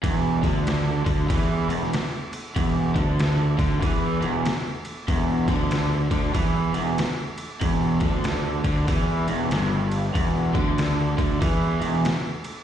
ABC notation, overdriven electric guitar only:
X:1
M:4/4
L:1/8
Q:"Swing" 1/4=95
K:Em
V:1 name="Overdriven electric guitar" clef=bass
E,, D,2 D, E, E,, z2 | E,, D,2 D, E, E,, z2 | E,, D,2 D, E, E,, z2 | E,, D,2 D, E, E,, G,,2 |
E,, D,2 D, E, E,, z2 |]